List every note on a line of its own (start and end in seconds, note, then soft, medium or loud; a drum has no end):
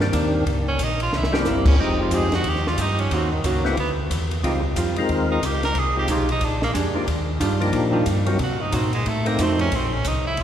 0.00 0.12 G2 medium
0.00 0.44 D#3 medium
0.00 0.44 A#3 medium
0.00 0.44 C4 medium
0.00 0.45 D4 medium
0.00 0.45 G4 medium
0.00 snare medium
0.13 0.45 D#2 medium
0.13 0.46 D#3 medium
0.13 0.46 A#3 medium
0.13 0.47 D4 medium
0.13 kick soft
0.13 hi-hat pedal medium
0.13 ride medium
0.46 0.78 C#2 medium
0.46 kick soft
0.46 ride medium
0.68 0.85 C#4 loud
0.79 1.11 A#1 medium
0.79 kick soft
0.79 hi-hat pedal medium
0.79 ride medium
0.83 1.02 D#4 medium
1.00 1.19 F4 loud
1.00 ride soft
1.13 1.45 C2 medium
1.13 snare soft
1.17 1.35 E4 medium
1.24 snare medium
1.32 1.76 G3 medium
1.32 1.50 G3 medium
1.32 1.76 A#3 medium
1.32 1.76 C4 medium
1.32 1.76 E4 medium
1.32 1.76 G4 medium
1.32 snare medium
1.45 1.78 G1 medium
1.45 1.64 G3 medium
1.45 1.65 A#3 medium
1.45 1.67 A#3 medium
1.45 1.65 E4 medium
1.45 snare medium
1.45 hi-hat pedal medium
1.66 1.82 C#4 medium
1.66 kick medium
1.66 crash medium
1.78 2.10 F1 medium
1.78 2.28 F3 medium
1.78 2.28 G#3 medium
1.78 2.28 C4 medium
1.78 2.29 D#4 medium
1.78 2.00 D#4 medium
1.78 2.29 G4 medium
1.78 kick soft
2.02 2.17 F4 medium
2.11 2.44 F2 medium
2.11 2.30 F3 medium
2.11 2.30 G#3 medium
2.11 2.31 D#4 medium
2.11 2.31 G4 medium
2.11 kick soft
2.11 hi-hat pedal medium
2.11 ride medium
2.15 2.34 G#4 loud
2.32 2.50 F#4 medium
2.32 snare medium
2.32 ride soft
2.44 2.77 D#2 medium
2.44 kick soft
2.44 ride medium
2.49 2.70 G4 medium
2.56 snare soft
2.67 2.83 F4 loud
2.67 snare soft
2.78 3.10 G2 medium
2.78 3.11 F3 medium
2.78 3.12 D#4 medium
2.78 3.02 D#4 medium
2.78 3.12 G4 medium
2.78 kick soft
2.78 hi-hat pedal medium
2.78 ride medium
2.99 3.15 C#4 medium
2.99 ride soft
3.11 3.43 D#2 medium
3.11 3.30 D#3 medium
3.11 3.30 A#3 medium
3.11 3.31 C4 medium
3.11 3.30 C#4 medium
3.11 3.30 F#4 medium
3.11 kick soft
3.11 ride medium
3.32 3.48 D#3 medium
3.44 3.76 C#2 medium
3.44 3.62 D#3 medium
3.44 3.67 F#3 medium
3.44 3.63 A#3 medium
3.44 3.63 C#4 medium
3.44 3.63 F#4 medium
3.44 kick soft
3.44 hi-hat pedal medium
3.44 ride medium
3.65 3.76 A3 medium
3.65 3.78 A#3 medium
3.65 3.76 B3 medium
3.65 3.76 C4 medium
3.65 3.76 E4 medium
3.65 3.77 F#4 medium
3.65 snare soft
3.77 4.09 D2 medium
3.77 3.91 B3 medium
3.77 kick soft
3.77 ride medium
4.10 4.42 E2 medium
4.10 kick soft
4.10 hi-hat pedal medium
4.10 ride medium
4.31 ride soft
4.43 4.75 C#2 medium
4.43 4.61 G3 soft
4.43 4.61 G#3 medium
4.43 4.62 C4 medium
4.43 4.62 D#4 medium
4.43 4.62 F4 medium
4.43 4.62 G4 medium
4.43 kick soft
4.43 ride medium
4.76 4.94 F2 medium
4.76 4.95 G3 medium
4.76 4.95 C4 medium
4.76 4.95 F4 medium
4.76 kick soft
4.76 hi-hat pedal medium
4.76 ride medium
4.95 5.02 F2 soft
4.95 5.40 G#3 medium
4.95 5.41 C4 medium
4.95 5.41 D#4 medium
4.95 5.41 F4 medium
4.95 ride soft
5.00 5.41 A#4 medium
5.09 5.41 D#2 medium
5.09 kick soft
5.09 ride medium
5.32 5.47 D#4 medium
5.42 5.74 C#2 medium
5.42 5.64 G4 medium
5.42 kick soft
5.42 hi-hat pedal medium
5.42 ride medium
5.63 5.80 A#4 loud
5.63 snare soft
5.63 ride medium
5.75 6.07 C2 medium
5.75 kick soft
5.75 ride medium
5.79 5.97 G#4 medium
5.95 6.07 G#3 medium
5.95 6.07 C4 medium
5.95 6.08 D#4 medium
5.95 6.08 F4 soft
5.95 6.08 G4 medium
5.95 6.14 G4 loud
6.08 6.40 B1 medium
6.08 6.27 F3 medium
6.08 6.27 G#3 medium
6.08 6.27 D#4 medium
6.08 6.27 G4 medium
6.08 kick soft
6.08 hi-hat pedal medium
6.08 ride medium
6.12 6.31 F4 medium
6.29 6.46 D#4 medium
6.29 ride soft
6.41 6.73 A#1 medium
6.41 kick soft
6.41 ride medium
6.45 6.63 D4 medium
6.62 6.71 A#3 loud
6.62 snare medium
6.74 6.91 F2 medium
6.74 7.07 G#3 medium
6.74 7.07 D4 medium
6.74 7.08 G4 medium
6.74 kick soft
6.74 hi-hat pedal medium
6.74 ride medium
6.93 6.99 F2 soft
6.93 7.06 F3 medium
6.93 7.06 A#3 medium
6.93 7.06 D4 medium
6.93 7.07 D#4 medium
6.93 7.07 G4 medium
7.07 7.39 D#2 medium
7.07 kick soft
7.07 ride medium
7.40 7.72 G2 medium
7.40 7.58 D#3 medium
7.40 7.59 G3 medium
7.40 7.59 D4 medium
7.40 7.59 F4 medium
7.40 kick soft
7.40 hi-hat pedal medium
7.40 ride medium
7.60 8.04 F3 medium
7.60 8.04 A#3 medium
7.60 8.04 D4 medium
7.60 8.04 D#4 medium
7.60 8.05 G4 medium
7.60 ride soft
7.73 8.05 A#2 medium
7.73 kick soft
7.73 ride medium
7.92 8.04 D#3 medium
7.92 8.05 G3 medium
7.92 8.05 D4 medium
7.92 8.05 F4 medium
8.06 8.38 G2 medium
8.06 kick soft
8.06 hi-hat pedal medium
8.06 ride medium
8.26 8.38 F#3 medium
8.26 8.38 A#3 medium
8.26 8.38 C4 medium
8.26 8.39 D#4 medium
8.26 8.39 F#4 medium
8.26 ride medium
8.39 8.58 C3 medium
8.39 kick soft
8.39 ride medium
8.43 8.63 F#4 medium
8.60 8.66 C3 soft
8.60 8.76 D#4 medium
8.72 9.04 A#2 medium
8.72 8.90 A#3 medium
8.72 8.94 C4 medium
8.72 8.91 D#4 medium
8.72 8.91 F#4 medium
8.72 kick soft
8.72 hi-hat pedal medium
8.72 ride medium
8.93 9.10 G#3 medium
8.93 ride medium
9.06 9.38 A2 medium
9.06 9.29 A3 medium
9.06 kick soft
9.06 ride medium
9.25 9.69 A3 medium
9.25 9.44 A#3 medium
9.25 9.69 C4 medium
9.25 9.70 D#4 medium
9.25 ride soft
9.38 9.70 F2 medium
9.38 9.72 F3 medium
9.38 9.72 A3 medium
9.38 9.60 C4 medium
9.38 9.73 D#4 medium
9.38 9.73 F#4 medium
9.38 kick soft
9.38 hi-hat pedal medium
9.38 ride medium
9.59 9.77 C#4 loud
9.59 ride medium
9.72 10.04 A#1 medium
9.72 9.95 C4 medium
9.72 kick soft
9.72 ride medium
9.94 10.09 C#4 loud
10.04 10.37 C2 medium
10.04 10.26 D#4 medium
10.04 kick soft
10.04 hi-hat pedal medium
10.04 ride medium
10.27 10.42 E4 loud
10.37 10.43 A#1 medium
10.37 kick soft
10.37 ride medium